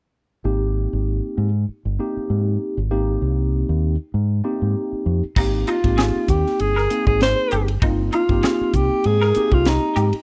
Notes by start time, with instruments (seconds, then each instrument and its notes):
0.44 fingered electric bass G#1, tine electric piano A#3 C4 D#4 G4
0.93 fingered electric bass G#1
1.38 fingered electric bass G#2
1.69 muted fingered electric bass stroke
1.85 fingered electric bass G1
1.99 tine electric piano A#3 C4 D#4 G4
2.17 muted fingered electric bass stroke
2.30 fingered electric bass G#2
2.77 fingered electric bass G#1
2.91 tine electric piano A#3 C4 D#4 G4
3.22 fingered electric bass C2
3.69 fingered electric bass D#2
4.14 fingered electric bass G#2
4.44 tine electric piano A#3 C4 D#4 G4
4.62 fingered electric bass G#2
4.92 muted fingered electric bass stroke
5.06 fingered electric bass F2
5.24 muted fingered electric bass stroke
5.36 fingered electric bass G#1, tine electric piano A#3 C4 D#4 G4, clean electric guitar D#4, kick, crash
5.67 clean electric guitar D#4, alto saxophone F4, hi-hat pedal, ride
5.84 fingered electric bass G#1, tine electric piano A#3 C4 D#4 G4, kick, ride
5.98 clean electric guitar G#4, snare, ride
6.28 fingered electric bass D#2, alto saxophone G4, kick, hi-hat pedal, ride
6.46 snare
6.59 fingered electric bass G1, alto saxophone G#4, ride
6.76 clean electric guitar A#4, snare
6.90 tine electric piano A#3 C4 D#4 G#4, hi-hat pedal, ride
7.07 fingered electric bass G#1, alto saxophone G#4, kick
7.21 alto saxophone C5, snare, ride
7.51 fingered electric bass G1, clean electric guitar G4, hi-hat pedal, ride
7.68 ride
7.82 fingered electric bass G1, tine electric piano A#3 C4 D#4 F4, clean electric guitar D#4, kick, ride
8.12 clean electric guitar D#4, alto saxophone F4, hi-hat pedal, ride
8.29 fingered electric bass G1, tine electric piano A#3 C4 D#4 G4, kick
8.43 clean electric guitar G#4, snare, ride
8.61 muted fingered electric bass stroke
8.73 fingered electric bass C2, alto saxophone G4, kick, hi-hat pedal, ride
9.04 fingered electric bass G#2, alto saxophone G#4, ride
9.21 clean electric guitar A#4, snare
9.35 tine electric piano A#3 C4 D#4 G4, muted fingered electric bass stroke, hi-hat pedal, ride
9.52 fingered electric bass C2, alto saxophone F4, kick
9.65 alto saxophone D#4, snare, ride
9.96 fingered electric bass G#2, clean electric guitar G4, hi-hat pedal, ride
10.13 muted fingered electric bass stroke, ride